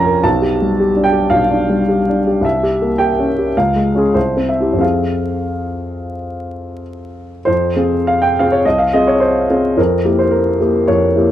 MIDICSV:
0, 0, Header, 1, 2, 480
1, 0, Start_track
1, 0, Key_signature, -4, "minor"
1, 0, Tempo, 550964
1, 200, Time_signature, 4, 2, 24, 8
1, 3084, Tempo, 612245
1, 3564, Tempo, 663717
1, 5964, Tempo, 587084
1, 6924, Tempo, 564972
1, 9193, End_track
2, 0, Start_track
2, 0, Title_t, "Upright piano"
2, 0, Program_c, 0, 0
2, 0, Control_c, 0, 64, 127
2, 0, Note_on_c, 0, 34, 41
2, 0, Note_on_c, 0, 41, 35
2, 0, Note_on_c, 0, 53, 36
2, 0, Note_on_c, 0, 61, 33
2, 0, Note_on_c, 0, 70, 33
2, 0, Note_on_c, 0, 77, 62
2, 0, Note_on_c, 0, 79, 62
2, 0, Note_on_c, 0, 80, 72
2, 0, Note_on_c, 0, 82, 64
2, 50, Note_off_c, 0, 70, 0
2, 50, Note_on_c, 0, 70, 35
2, 135, Note_off_c, 0, 61, 0
2, 195, Note_off_c, 0, 82, 0
2, 203, Note_off_c, 0, 70, 0
2, 204, Note_on_c, 0, 81, 67
2, 207, Note_on_c, 0, 35, 41
2, 214, Control_c, 0, 64, 0
2, 218, Note_off_c, 0, 53, 0
2, 221, Note_off_c, 0, 77, 0
2, 221, Note_off_c, 0, 80, 0
2, 222, Note_off_c, 0, 41, 0
2, 224, Note_off_c, 0, 34, 0
2, 224, Note_off_c, 0, 79, 0
2, 355, Control_c, 0, 64, 127
2, 364, Note_on_c, 0, 67, 33
2, 539, Note_on_c, 0, 55, 34
2, 619, Note_off_c, 0, 67, 0
2, 696, Note_on_c, 0, 67, 32
2, 787, Note_off_c, 0, 55, 0
2, 841, Note_on_c, 0, 62, 32
2, 903, Note_on_c, 0, 79, 58
2, 922, Note_off_c, 0, 81, 0
2, 943, Note_off_c, 0, 67, 0
2, 981, Note_on_c, 0, 67, 34
2, 1092, Note_off_c, 0, 62, 0
2, 1124, Note_off_c, 0, 35, 0
2, 1131, Note_on_c, 0, 77, 62
2, 1137, Note_on_c, 0, 35, 35
2, 1147, Note_off_c, 0, 79, 0
2, 1241, Note_off_c, 0, 67, 0
2, 1310, Note_on_c, 0, 62, 33
2, 1475, Note_on_c, 0, 55, 33
2, 1571, Note_off_c, 0, 62, 0
2, 1643, Note_on_c, 0, 67, 33
2, 1736, Note_off_c, 0, 55, 0
2, 1820, Note_on_c, 0, 62, 31
2, 1901, Note_off_c, 0, 67, 0
2, 1977, Note_on_c, 0, 67, 31
2, 2069, Note_off_c, 0, 62, 0
2, 2085, Note_off_c, 0, 35, 0
2, 2101, Note_on_c, 0, 36, 35
2, 2111, Note_off_c, 0, 77, 0
2, 2130, Note_off_c, 0, 67, 0
2, 2132, Note_on_c, 0, 76, 55
2, 2138, Control_c, 0, 64, 0
2, 2289, Control_c, 0, 64, 127
2, 2293, Note_on_c, 0, 67, 31
2, 2455, Note_on_c, 0, 58, 28
2, 2542, Note_off_c, 0, 67, 0
2, 2599, Note_on_c, 0, 79, 55
2, 2605, Note_off_c, 0, 76, 0
2, 2609, Note_on_c, 0, 67, 31
2, 2703, Note_off_c, 0, 58, 0
2, 2777, Note_on_c, 0, 61, 26
2, 2861, Note_off_c, 0, 67, 0
2, 2947, Note_on_c, 0, 67, 29
2, 3028, Note_off_c, 0, 61, 0
2, 3046, Note_off_c, 0, 36, 0
2, 3085, Note_off_c, 0, 79, 0
2, 3098, Note_off_c, 0, 67, 0
2, 3098, Control_c, 0, 64, 0
2, 3108, Note_on_c, 0, 77, 53
2, 3110, Note_on_c, 0, 37, 35
2, 3218, Control_c, 0, 64, 127
2, 3254, Note_on_c, 0, 56, 26
2, 3403, Note_on_c, 0, 61, 27
2, 3411, Note_on_c, 0, 65, 27
2, 3426, Note_on_c, 0, 68, 41
2, 3452, Note_off_c, 0, 77, 0
2, 3505, Note_off_c, 0, 56, 0
2, 3550, Note_off_c, 0, 61, 0
2, 3555, Note_off_c, 0, 65, 0
2, 3558, Note_off_c, 0, 68, 0
2, 3558, Note_on_c, 0, 72, 45
2, 3563, Note_off_c, 0, 37, 0
2, 3563, Note_on_c, 0, 36, 31
2, 3578, Control_c, 0, 64, 0
2, 3712, Control_c, 0, 64, 127
2, 3719, Note_on_c, 0, 60, 24
2, 3798, Note_off_c, 0, 72, 0
2, 3806, Note_on_c, 0, 76, 44
2, 3889, Note_on_c, 0, 64, 23
2, 3900, Note_on_c, 0, 67, 25
2, 3978, Note_off_c, 0, 60, 0
2, 3983, Note_on_c, 0, 41, 28
2, 4022, Note_on_c, 0, 60, 22
2, 4030, Note_off_c, 0, 36, 0
2, 4032, Note_on_c, 0, 65, 22
2, 4033, Note_off_c, 0, 64, 0
2, 4036, Note_on_c, 0, 68, 22
2, 4039, Note_off_c, 0, 67, 0
2, 4039, Note_on_c, 0, 77, 41
2, 4048, Note_off_c, 0, 76, 0
2, 4060, Control_c, 0, 64, 0
2, 4190, Control_c, 0, 64, 127
2, 5486, Note_off_c, 0, 77, 0
2, 5905, Note_off_c, 0, 41, 0
2, 5924, Note_off_c, 0, 60, 0
2, 5930, Note_off_c, 0, 65, 0
2, 5932, Note_off_c, 0, 68, 0
2, 5950, Note_on_c, 0, 72, 54
2, 5962, Note_on_c, 0, 41, 33
2, 5980, Control_c, 0, 64, 0
2, 6135, Control_c, 0, 64, 127
2, 6203, Note_off_c, 0, 41, 0
2, 6204, Note_on_c, 0, 60, 28
2, 6205, Note_on_c, 0, 65, 28
2, 6209, Note_on_c, 0, 68, 31
2, 6449, Note_off_c, 0, 72, 0
2, 6457, Note_on_c, 0, 77, 57
2, 6574, Note_on_c, 0, 79, 51
2, 6577, Note_off_c, 0, 77, 0
2, 6658, Note_off_c, 0, 60, 0
2, 6658, Note_off_c, 0, 65, 0
2, 6660, Note_off_c, 0, 68, 0
2, 6693, Note_off_c, 0, 79, 0
2, 6718, Note_on_c, 0, 77, 56
2, 6723, Note_on_c, 0, 68, 30
2, 6724, Note_on_c, 0, 60, 27
2, 6726, Note_on_c, 0, 65, 26
2, 6821, Note_on_c, 0, 73, 47
2, 6822, Note_off_c, 0, 77, 0
2, 6918, Note_off_c, 0, 60, 0
2, 6918, Note_off_c, 0, 68, 0
2, 6919, Note_off_c, 0, 65, 0
2, 6931, Note_off_c, 0, 73, 0
2, 6931, Note_on_c, 0, 75, 57
2, 6932, Note_on_c, 0, 36, 32
2, 6942, Control_c, 0, 64, 0
2, 7041, Note_on_c, 0, 77, 49
2, 7047, Note_off_c, 0, 75, 0
2, 7094, Control_c, 0, 64, 127
2, 7160, Note_off_c, 0, 36, 0
2, 7162, Note_off_c, 0, 77, 0
2, 7168, Note_on_c, 0, 75, 57
2, 7171, Note_on_c, 0, 60, 27
2, 7173, Note_on_c, 0, 65, 30
2, 7177, Note_on_c, 0, 68, 31
2, 7286, Note_off_c, 0, 75, 0
2, 7287, Note_on_c, 0, 73, 48
2, 7396, Note_on_c, 0, 72, 51
2, 7407, Note_off_c, 0, 73, 0
2, 7616, Note_off_c, 0, 60, 0
2, 7617, Note_off_c, 0, 65, 0
2, 7620, Note_off_c, 0, 68, 0
2, 7652, Note_on_c, 0, 60, 27
2, 7653, Note_on_c, 0, 65, 28
2, 7656, Note_on_c, 0, 68, 31
2, 7864, Note_off_c, 0, 60, 0
2, 7865, Note_off_c, 0, 65, 0
2, 7867, Note_off_c, 0, 68, 0
2, 7881, Note_off_c, 0, 72, 0
2, 7882, Note_on_c, 0, 41, 35
2, 7882, Note_on_c, 0, 70, 49
2, 7903, Control_c, 0, 64, 0
2, 8044, Control_c, 0, 64, 127
2, 8114, Note_off_c, 0, 41, 0
2, 8116, Note_on_c, 0, 58, 28
2, 8119, Note_on_c, 0, 64, 28
2, 8120, Note_on_c, 0, 67, 29
2, 8235, Note_on_c, 0, 72, 46
2, 8240, Note_off_c, 0, 70, 0
2, 8336, Note_on_c, 0, 70, 49
2, 8358, Note_off_c, 0, 72, 0
2, 8564, Note_off_c, 0, 58, 0
2, 8566, Note_off_c, 0, 64, 0
2, 8567, Note_off_c, 0, 67, 0
2, 8587, Note_on_c, 0, 58, 30
2, 8590, Note_on_c, 0, 64, 25
2, 8595, Note_on_c, 0, 67, 30
2, 8811, Note_off_c, 0, 58, 0
2, 8812, Note_off_c, 0, 64, 0
2, 8815, Note_off_c, 0, 67, 0
2, 8818, Note_on_c, 0, 73, 48
2, 8821, Note_on_c, 0, 41, 35
2, 8830, Note_off_c, 0, 70, 0
2, 9059, Note_on_c, 0, 58, 29
2, 9060, Note_on_c, 0, 64, 29
2, 9066, Note_off_c, 0, 41, 0
2, 9072, Note_on_c, 0, 67, 32
2, 9193, Note_off_c, 0, 58, 0
2, 9193, Note_off_c, 0, 64, 0
2, 9193, Note_off_c, 0, 67, 0
2, 9193, Note_off_c, 0, 73, 0
2, 9193, End_track
0, 0, End_of_file